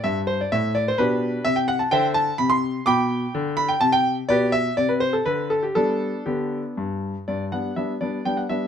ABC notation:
X:1
M:3/4
L:1/16
Q:1/4=125
K:G
V:1 name="Grand piano"
e2 c d e2 d c [DGB]4 | e g f a [ceg]2 a2 b c'3 | [gbd']6 b g a g3 | [GBd]2 e2 d B c A B2 A G |
[DA]4 [B,DG]4 z4 | d2 f2 e2 d2 g f e2 |]
V:2 name="Grand piano" clef=bass
G,,4 A,,4 B,,4 | C,4 D,4 C,4 | B,,4 D,4 C,4 | B,,4 C,4 D,4 |
[G,B,]4 D,4 G,,4 | G,,2 [G,B,D]2 [G,B,D]2 [G,B,D]2 [G,B,D]2 [G,B,D]2 |]